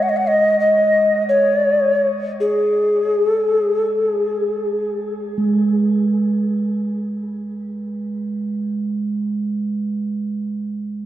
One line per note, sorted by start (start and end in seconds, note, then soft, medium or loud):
0.00 1.13 G#3 medium
0.00 0.11 F#5 medium
0.09 0.18 D#5 medium
0.17 0.29 F#5 medium
0.27 0.59 D#5 medium
0.60 1.23 D#5 medium
1.29 2.07 C#5 medium
2.40 3.30 G#4 medium
3.30 3.54 A4 medium
3.54 3.81 G#4 medium
3.81 4.05 A4 medium
4.05 4.94 G#4 medium
5.38 10.23 G#3 soft